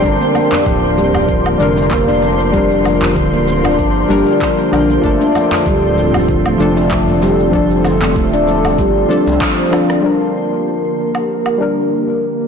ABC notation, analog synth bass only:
X:1
M:4/4
L:1/16
Q:"Swing 16ths" 1/4=96
K:Gm
V:1 name="Analog synth bass" clef=bass
G,,, z3 D,,,6 F,,,6- | F,,,4 D,,,4 G,,,2 G,,, z3 B,,,2 | G,,, z3 D,,,6 F,,,6- | F,,,4 D,,,4 G,,,2 z C,, z4 |
z16 |]